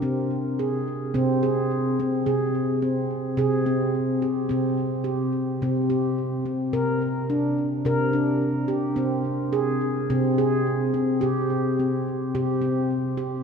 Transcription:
<<
  \new Staff \with { instrumentName = "Handpan" } { \time 4/4 \key aes \lydian \tempo 4 = 107 c'4 aes'4 c'8 aes'4 c'8 | aes'4 c'4 aes'8 c'4 g'8 | c'4 g'4 c'8 g'4 c'8 | bes'4 d'4 bes'8 d'4 g'8 |
c'4 aes'4 c'8 aes'4 c'8 | g'4 c'4 g'8 c'4 g'8 | }
  \new Staff \with { instrumentName = "Handpan" } { \clef bass \time 4/4 \key aes \lydian c2 c2 | c2 c2 | c2 c2 | c2 c2 |
c2 c2 | c2 c2 | }
>>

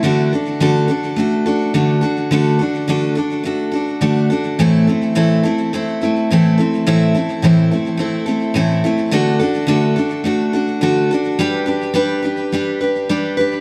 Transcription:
\new Staff \with { instrumentName = "Steel-string acoustic guitar" } { \time 4/4 \key d \mixolydian \tempo 4 = 106 <d a d' fis' a'>8 <d' fis' a'>8 <d a d' fis' a'>8 <d' fis' a'>8 <a d' fis' a'>8 <d' fis' a'>8 <d a d' fis' a'>8 <d' fis' a'>8 | <d a d' fis' a'>8 <d' fis' a'>8 <d a d' fis' a'>8 <d' fis' a'>8 <a d' fis' a'>8 <d' fis' a'>8 <d a d' fis' a'>8 <d' fis' a'>8 | <a, e a c' e' a'>8 <a c' e' a'>8 <a, e a c' e' a'>8 <a c' e' a'>8 <a c' e' a'>8 <a c' e' a'>8 <a, e a c' e' a'>8 <a c' e' a'>8 | <a, e a c' e' a'>8 <a c' e' a'>8 <a, e a c' e' a'>8 <a c' e' a'>8 <a c' e' a'>8 <a c' e' a'>8 <a, e a c' e' a'>8 <a c' e' a'>8 |
<d a d' fis' a'>8 <d' fis' a'>8 <d a d' fis' a'>8 <d' fis' a'>8 <a d' fis' a'>8 <d' fis' a'>8 <d a d' fis' a'>8 <d' fis' a'>8 | <g d' g' b'>8 <d' g' b'>8 <g d' g' b'>8 <d' g' b'>8 <g d' g' b'>8 <d' g' b'>8 <g d' g' b'>8 <d' g' b'>8 | }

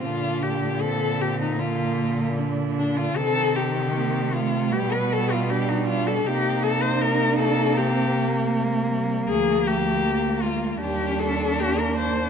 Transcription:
<<
  \new Staff \with { instrumentName = "Cello" } { \time 4/4 \key bes \major \tempo 4 = 78 f'8 g'8 a'8 g'16 ees'16 f'4 r8 d'16 f'16 | a'8 g'4 f'8 g'16 b'16 a'16 f'16 g'16 ees'16 f'16 a'16 | g'8 a'16 c''16 bes'8 a'8 g'4 r4 | aes'8 g'4 f'8 g'8 a'8 g'16 bes'16 c''8 | }
  \new Staff \with { instrumentName = "Cello" } { \time 4/4 \key bes \major d'4 c'4 bes4 d'4 | c'4 bes8 a8 b4 d'4 | ees'2 c'8 bes8 a8 g8 | f4 bes8 aes8 g4 bes4 | }
  \new Staff \with { instrumentName = "Cello" } { \clef bass \time 4/4 \key bes \major d1 | ees2 g2 | bes1~ | bes2 d'2 | }
  \new Staff \with { instrumentName = "Cello" } { \clef bass \time 4/4 \key bes \major bes,1 | c2 b,2 | c1 | d,2 ees,2 | }
>>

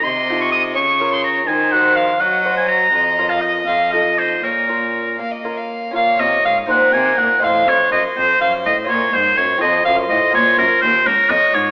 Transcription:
<<
  \new Staff \with { instrumentName = "Oboe" } { \time 6/8 \key bes \minor \tempo 4. = 83 c'''8. des'''16 ees'''8 des'''8. c'''16 bes''8 | aes''8 ges''8 f''8 ges''8. aes''16 bes''8~ | bes''8. f''16 ees''8 f''8 ees''8 c''8 | bes'4. r4. |
f''8 ees''8 f''8 ges''8 aes''8 ges''8 | f''8 des''8 ees''8 c''8 f''8 ees''8 | des''8 c''8 des''8 ees''8 f''8 ees''8 | des''8 bes'8 c''8 bes'8 ees''8 des''8 | }
  \new Staff \with { instrumentName = "Violin" } { \time 6/8 \key bes \minor ees''4. des''4. | c''4. ees''4. | ees''2. | des''4. f''16 ees''8 f''8. |
des''4. bes'4. | c''2.~ | c''4. c''4.~ | c''4. des''4. | }
  \new Staff \with { instrumentName = "Lute" } { \time 6/8 \key bes \minor r8 <ees' f' a'>4 r8 <des' f' bes'>4 | r8 <c' ges' c''>4. <c' ges' c''>4 | r8 <des' f' bes'>4 r8 <ees' f' a'>4 | r8 <des' f' bes'>4. <des' f' bes'>4 |
<des' f' bes'>4. <c' ees' c''>4. | <c' ees' c''>2. | <des' f' bes'>4. <c' f' a'>4. | <bes f' bes'>2. | }
  \new Staff \with { instrumentName = "Lute" } { \clef bass \time 6/8 \key bes \minor c4. des4. | ees4. ges4. | f,4. f,4. | bes,4. bes4. |
bes,8 c8 aes,8 bes,8 c8 bes,8 | a,8 f,8 ges,8 f,8 ges,8 a,8 | bes,8 aes,8 ges,8 f,8 ges,8 a,8 | bes,8 ges,8 ees,8 r8 f,8 aes,8 | }
  \new Staff \with { instrumentName = "Cello" } { \clef bass \time 6/8 \key bes \minor c4. des4. | ees4. ges4. | f,4. f,4. | bes,4. bes4. |
bes,8 c8 aes,8 bes,8 c8 bes,8 | a,8 f,8 ges,8 f,8 ges,8 a,8 | bes,8 aes,8 ges,8 f,8 ges,8 a,8 | bes,8 ges,8 ees,8 des,8 f,8 aes,8 | }
>>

